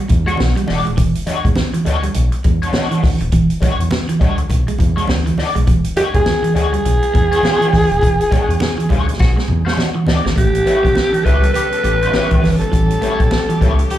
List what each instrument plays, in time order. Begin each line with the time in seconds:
0.08 analog synth bass E2, muted clean electric guitar stroke, kick, closed hi-hat, low conga
0.26 clean electric guitar G#3 D4 F#4 C#5, tenor saxophone F#4, closed hi-hat
0.37 analog synth bass B1, snare, high conga
0.56 clean electric guitar G3, muted clean electric guitar stroke, closed hi-hat
0.67 analog synth bass E1, clean electric guitar G#3 D4 F#4 D5, muted clean electric guitar stroke, snare, open hi-hat, high conga
0.85 analog synth bass D#1, clean electric guitar G#3, muted clean electric guitar stroke, closed hi-hat
0.97 analog synth bass E1, clean electric guitar E3, kick, closed hi-hat, muted conga
1.15 closed hi-hat
1.26 analog synth bass E2, clean electric guitar G#3 D4 F#4 C#5, muted clean electric guitar stroke, closed hi-hat, muted conga
1.45 analog synth bass E2, clean electric guitar G#3, kick, closed hi-hat
1.56 snare, high conga
1.74 clean electric guitar E3, muted clean electric guitar stroke, closed hi-hat
1.85 analog synth bass D2, clean electric guitar G#3 D4 F#4 C#5, muted clean electric guitar stroke, closed hi-hat
2.03 clean electric guitar G3, muted clean electric guitar stroke, closed hi-hat
2.14 analog synth bass B1, muted clean electric guitar stroke, closed hi-hat, muted conga
2.32 muted clean electric guitar stroke, closed hi-hat
2.44 analog synth bass E2, clean electric guitar G#3, kick, closed hi-hat
2.62 clean electric guitar G#3 D4 F#4 C#5, closed hi-hat
2.72 clean electric guitar G#3 D4 F#4 C#5, muted clean electric guitar stroke, snare, high conga
2.91 clean electric guitar E3, closed hi-hat
3.02 analog synth bass D2, clean electric guitar E3, muted clean electric guitar stroke, kick, snare, open hi-hat, high conga
3.20 analog synth bass D#1, muted clean electric guitar stroke, closed hi-hat
3.32 analog synth bass E1, clean electric guitar E3, kick, closed hi-hat, muted conga
3.50 closed hi-hat
3.61 analog synth bass E2, clean electric guitar G#3 D4 F#4 C#5, kick, closed hi-hat, muted conga
3.80 analog synth bass E2, muted clean electric guitar stroke, closed hi-hat
3.91 muted clean electric guitar stroke, snare, high conga
4.09 clean electric guitar E3, muted clean electric guitar stroke, closed hi-hat
4.20 analog synth bass D2, clean electric guitar G3 G#3 D4 F#4 C#5, kick, closed hi-hat
4.38 muted clean electric guitar stroke, closed hi-hat
4.49 analog synth bass B1, muted clean electric guitar stroke, kick, closed hi-hat, muted conga
4.67 clean electric guitar G#3, muted clean electric guitar stroke, closed hi-hat
4.78 analog synth bass E2, muted clean electric guitar stroke, kick, closed hi-hat, low conga
4.96 clean electric guitar G#3 D4 F#4 C#5, closed hi-hat
5.07 analog synth bass D2, snare, high conga
5.26 clean electric guitar E3, muted clean electric guitar stroke, closed hi-hat
5.38 clean electric guitar G#3 D4 F#4 D5, muted clean electric guitar stroke, snare, open hi-hat, high conga
5.55 analog synth bass B1, clean electric guitar G#3, muted clean electric guitar stroke, closed hi-hat
5.67 analog synth bass E1, clean electric guitar E3, kick, closed hi-hat, muted conga
5.84 closed hi-hat
5.96 analog synth bass E2, clean electric guitar G#3 D4 F#4 C#5, alto saxophone G4, muted clean electric guitar stroke, closed hi-hat, muted conga
6.14 analog synth bass E2, clean electric guitar G#3, alto saxophone G#4, kick, closed hi-hat
6.26 snare, high conga
6.43 clean electric guitar E3, muted clean electric guitar stroke, closed hi-hat
6.54 analog synth bass D2, clean electric guitar G#3 D4 F#4 C#5, alto saxophone G#4, muted clean electric guitar stroke, closed hi-hat
6.73 clean electric guitar G3, muted clean electric guitar stroke, closed hi-hat
6.85 analog synth bass B1, muted clean electric guitar stroke, closed hi-hat, muted conga
7.02 muted clean electric guitar stroke, closed hi-hat
7.14 analog synth bass E2, clean electric guitar G#3, kick, closed hi-hat
7.32 clean electric guitar G#3 D4 F#4 C#5, closed hi-hat
7.43 clean electric guitar G3 C#4 F4 C5, muted clean electric guitar stroke, snare, high conga
7.55 clean electric guitar G#3 D4 F#4 C#5
7.61 clean electric guitar E3, closed hi-hat
7.73 analog synth bass D2, clean electric guitar E3, muted clean electric guitar stroke, kick, snare, open hi-hat, high conga
7.90 analog synth bass D#1, muted clean electric guitar stroke, closed hi-hat
8.01 analog synth bass E1, clean electric guitar E3, kick, closed hi-hat, muted conga
8.21 closed hi-hat
8.31 analog synth bass E2, clean electric guitar G#3 D4 F#4 C#5, kick, closed hi-hat, muted conga
8.48 analog synth bass E2, muted clean electric guitar stroke, closed hi-hat
8.60 muted clean electric guitar stroke, snare, high conga
8.78 clean electric guitar E3, muted clean electric guitar stroke, closed hi-hat
8.89 analog synth bass D2, clean electric guitar G3 G#3 D4 F#4 C#5, kick, closed hi-hat, low conga
9.08 muted clean electric guitar stroke, closed hi-hat
9.19 analog synth bass B1, tenor saxophone F#4, muted clean electric guitar stroke, kick, snare, muted conga
9.36 clean electric guitar G#3, muted clean electric guitar stroke, snare
9.48 analog synth bass E2, muted clean electric guitar stroke, low conga
9.65 clean electric guitar G#3 D4 F#4 C#5, tenor saxophone F#4, snare
9.77 snare, high conga
9.95 clean electric guitar E3, muted clean electric guitar stroke
10.07 analog synth bass D2, clean electric guitar G#3 D4 F#4 D5, muted clean electric guitar stroke, snare, high conga
10.25 analog synth bass G#1, clean electric guitar G#3, muted clean electric guitar stroke, snare
10.36 analog synth bass A1, string section G3 B3 C#4 A4, clean electric guitar A3, alto saxophone G4, kick, closed hi-hat, muted conga
10.55 closed hi-hat
10.65 clean electric guitar B3 E4 G4 C#5, muted clean electric guitar stroke, closed hi-hat, muted conga
10.83 analog synth bass B1, clean electric guitar B3, kick, closed hi-hat
10.95 snare, high conga
11.12 clean electric guitar E3, muted clean electric guitar stroke, closed hi-hat
11.24 analog synth bass C#2, clean electric guitar B3 E4 G4 C#5, alto saxophone B4, muted clean electric guitar stroke, kick, closed hi-hat
11.42 clean electric guitar G3, muted clean electric guitar stroke, closed hi-hat
11.53 tenor saxophone G4, alto saxophone B4, muted clean electric guitar stroke, closed hi-hat, muted conga
11.72 muted clean electric guitar stroke, closed hi-hat
11.83 analog synth bass A1, clean electric guitar A3, tenor saxophone G4, closed hi-hat
12.02 clean electric guitar B3 E4 G4 C#5, closed hi-hat
12.13 clean electric guitar B3 E4 G4 C#5, tenor saxophone G4, muted clean electric guitar stroke, snare, high conga
12.31 analog synth bass C#2, clean electric guitar E3, kick, closed hi-hat
12.42 analog synth bass G1, clean electric guitar E3, muted clean electric guitar stroke, snare, open hi-hat, high conga
12.59 analog synth bass G#1, alto saxophone A4, muted clean electric guitar stroke, closed hi-hat
12.71 analog synth bass A1, clean electric guitar E3, string section G4, kick, closed hi-hat, muted conga
12.90 closed hi-hat
13.02 clean electric guitar A3 B3 E4 G4 C#5, closed hi-hat, muted conga
13.19 analog synth bass B1, muted clean electric guitar stroke, kick, closed hi-hat
13.31 muted clean electric guitar stroke, snare, high conga
13.49 clean electric guitar E3, muted clean electric guitar stroke, closed hi-hat
13.61 analog synth bass C#2, clean electric guitar G3 B3 E4 G4 C#5, kick, closed hi-hat
13.79 muted clean electric guitar stroke, closed hi-hat
13.90 tenor saxophone G4, muted clean electric guitar stroke, closed hi-hat, muted conga